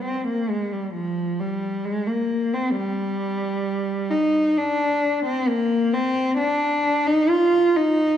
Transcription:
\new Staff \with { instrumentName = "Cello" } { \time 3/4 \key g \phrygian \tempo 4 = 66 c'16 bes16 aes16 g16 f8 g8 aes16 bes8 c'16 | \key d \phrygian g4. ees'8 d'8. c'16 | bes8 c'8 d'8. ees'16 f'8 ees'8 | }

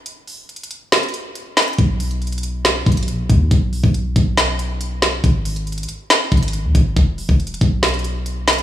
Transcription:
<<
  \new Staff \with { instrumentName = "808-style bass" } { \clef bass \time 4/4 \key gis \minor \tempo 4 = 139 r1 | b,,2~ b,,8 b,,8 ais,,16 b,,16 dis,8 | b,,8. b,,8. b,,2~ b,,8 | gis,,4. r4 gis,,8. dis,16 gis,,8 |
e,,8. e,,8. b,,2~ b,,8 | }
  \new DrumStaff \with { instrumentName = "Drums" } \drummode { \time 4/4 hh8 hho8 \tuplet 3/2 { hh16 hh16 hh16 hh16 r16 r16 } <hh sn>32 hh32 hh32 hh32 hh8 hh8 <hh sn>32 hh32 hh32 hh32 | <hh bd>8 <hh hho>16 hh16 hh32 hh32 hh32 hh32 hh8 <hh sn>8 <hh bd>32 hh32 hh32 hh32 hh8 <hh bd>8 | <hh bd>8 hho16 bd16 hh8 <hh bd>8 <hh sn>8 hh8 hh8 <hh sn>8 | <hh bd>8 <hh hho>16 hh16 hh32 hh32 hh32 hh32 hh8 <hh sn>8 <hh bd>32 hh32 hh32 hh32 hh8 <hh bd>8 |
<hh bd>8 hho16 bd16 \tuplet 3/2 { hh16 hh16 hh16 <hh bd>16 r16 r16 } <hh sn>32 hh32 hh32 hh32 hh8 hh8 <hh sn>32 hh32 hh16 | }
>>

